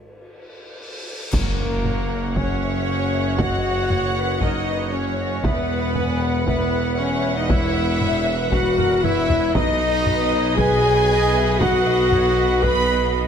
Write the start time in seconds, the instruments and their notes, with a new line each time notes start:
Already playing: cymbal swell
1.33 tuba F#1, double bass section F#1, cello section F#2, trumpet A#3, french horn section A#3, violin section A#4, viola section C#5 F#5, concert bass drum, taiko, crash, impact
1.85 taiko low-mid
2.36 french horn section C#4, trumpet C#4, flute section C#5, violin section C#5, taiko
2.61 flute section E5
2.87 flute section F#5
3.13 flute section E5
3.38 french horn section F#4, trumpet F#4, flute section D#5, violin section F#5, taiko
3.90 flute section C#5, taiko low-mid
4.16 flute section B4
4.41 french horn section D#4, trumpet D#4, flute section A#4, violin section D#5, taiko
4.67 flute section B4
4.92 french horn section C#4, trumpet C#4, flute section C#5, violin section C#5
5.18 flute section D#5
5.43 tuba E1, double bass section E1, cello section E2, french horn section B3, trumpet B3, violin section B4, viola section B4 F#5, flute section E5, taiko
5.95 flute section G#5, taiko low-mid
6.21 flute section F#5
6.47 french horn section B3, trumpet B3, violin section B4, flute section E5, taiko
6.98 trumpet C#4, french horn section C#4, violin section C#5, flute section E5
7.37 trumpet D#4, french horn section D#4, violin section D#5
7.49 french horn section E4, trumpet E4, flute section C#5, violin section E5, taiko
7.77 flute section B4
8.01 flute section C#5, taiko low-mid
8.52 french horn section F#4, trumpet F#4, flute section B4, violin section F#5, taiko
8.77 flute section A#4, taiko low-mid
9.02 french horn section E4, trumpet E4, flute section B4, violin section E5, taiko low-mid
9.29 flute section C#5, taiko low
9.53 tuba B1, double bass section B1, cello section B2, french horn section D#4, trumpet D#4, viola section B4 D#5, flute section D#5, violin section D#5, taiko
10.06 flute section B4, taiko low-mid
10.33 flute section C#5
10.56 french horn section G#4, trumpet G#4, flute section B4, violin section G#5, taiko
10.85 flute section C#5
11.10 flute section D#5
11.36 flute section E5
11.60 french horn section F#4, trumpet F#4, violin section F#5, flute section F#5, taiko
11.87 flute section D#5
12.12 flute section C#5, taiko low-mid
12.38 flute section B4
12.62 french horn section B4, trumpet B4, violin section B5, taiko
13.15 flute section D#5